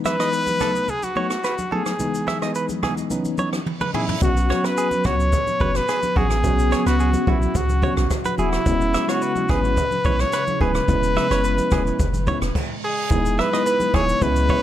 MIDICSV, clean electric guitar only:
0, 0, Header, 1, 2, 480
1, 0, Start_track
1, 0, Key_signature, 4, "major"
1, 0, Tempo, 555556
1, 1724, Time_signature, 4, 2, 24, 8
1, 12636, End_track
2, 0, Start_track
2, 0, Title_t, "Clean electric guitar"
2, 0, Program_c, 0, 27
2, 48, Note_on_c, 0, 76, 73
2, 131, Note_off_c, 0, 76, 0
2, 172, Note_on_c, 0, 75, 83
2, 249, Note_off_c, 0, 75, 0
2, 287, Note_on_c, 0, 71, 82
2, 371, Note_off_c, 0, 71, 0
2, 528, Note_on_c, 0, 69, 77
2, 611, Note_off_c, 0, 69, 0
2, 1008, Note_on_c, 0, 73, 74
2, 1091, Note_off_c, 0, 73, 0
2, 1246, Note_on_c, 0, 71, 71
2, 1330, Note_off_c, 0, 71, 0
2, 1488, Note_on_c, 0, 69, 79
2, 1571, Note_off_c, 0, 69, 0
2, 1968, Note_on_c, 0, 76, 80
2, 2051, Note_off_c, 0, 76, 0
2, 2095, Note_on_c, 0, 75, 74
2, 2171, Note_off_c, 0, 75, 0
2, 2209, Note_on_c, 0, 71, 77
2, 2292, Note_off_c, 0, 71, 0
2, 2451, Note_on_c, 0, 68, 68
2, 2533, Note_off_c, 0, 68, 0
2, 2930, Note_on_c, 0, 73, 78
2, 3013, Note_off_c, 0, 73, 0
2, 3295, Note_on_c, 0, 71, 74
2, 3371, Note_off_c, 0, 71, 0
2, 3410, Note_on_c, 0, 68, 75
2, 3492, Note_off_c, 0, 68, 0
2, 3889, Note_on_c, 0, 73, 72
2, 4013, Note_off_c, 0, 73, 0
2, 4013, Note_on_c, 0, 71, 83
2, 4090, Note_off_c, 0, 71, 0
2, 4128, Note_on_c, 0, 68, 85
2, 4211, Note_off_c, 0, 68, 0
2, 4368, Note_on_c, 0, 66, 74
2, 4451, Note_off_c, 0, 66, 0
2, 4848, Note_on_c, 0, 71, 81
2, 4931, Note_off_c, 0, 71, 0
2, 5088, Note_on_c, 0, 68, 70
2, 5171, Note_off_c, 0, 68, 0
2, 5328, Note_on_c, 0, 66, 80
2, 5411, Note_off_c, 0, 66, 0
2, 5808, Note_on_c, 0, 73, 79
2, 5891, Note_off_c, 0, 73, 0
2, 5932, Note_on_c, 0, 71, 78
2, 6009, Note_off_c, 0, 71, 0
2, 6049, Note_on_c, 0, 68, 81
2, 6132, Note_off_c, 0, 68, 0
2, 6289, Note_on_c, 0, 66, 73
2, 6372, Note_off_c, 0, 66, 0
2, 6768, Note_on_c, 0, 73, 77
2, 6851, Note_off_c, 0, 73, 0
2, 7133, Note_on_c, 0, 71, 79
2, 7209, Note_off_c, 0, 71, 0
2, 7249, Note_on_c, 0, 68, 83
2, 7332, Note_off_c, 0, 68, 0
2, 7728, Note_on_c, 0, 76, 77
2, 7811, Note_off_c, 0, 76, 0
2, 7853, Note_on_c, 0, 73, 83
2, 7968, Note_off_c, 0, 73, 0
2, 7968, Note_on_c, 0, 71, 88
2, 8051, Note_off_c, 0, 71, 0
2, 8208, Note_on_c, 0, 68, 78
2, 8291, Note_off_c, 0, 68, 0
2, 8689, Note_on_c, 0, 73, 82
2, 8772, Note_off_c, 0, 73, 0
2, 8930, Note_on_c, 0, 71, 76
2, 9012, Note_off_c, 0, 71, 0
2, 9169, Note_on_c, 0, 68, 81
2, 9252, Note_off_c, 0, 68, 0
2, 9648, Note_on_c, 0, 76, 82
2, 9731, Note_off_c, 0, 76, 0
2, 9774, Note_on_c, 0, 73, 76
2, 9850, Note_off_c, 0, 73, 0
2, 9889, Note_on_c, 0, 71, 84
2, 9972, Note_off_c, 0, 71, 0
2, 10129, Note_on_c, 0, 68, 75
2, 10212, Note_off_c, 0, 68, 0
2, 10611, Note_on_c, 0, 73, 80
2, 10693, Note_off_c, 0, 73, 0
2, 11569, Note_on_c, 0, 76, 76
2, 11652, Note_off_c, 0, 76, 0
2, 11695, Note_on_c, 0, 75, 83
2, 11771, Note_off_c, 0, 75, 0
2, 11810, Note_on_c, 0, 71, 87
2, 11892, Note_off_c, 0, 71, 0
2, 12049, Note_on_c, 0, 68, 80
2, 12132, Note_off_c, 0, 68, 0
2, 12529, Note_on_c, 0, 73, 84
2, 12612, Note_off_c, 0, 73, 0
2, 12636, End_track
0, 0, End_of_file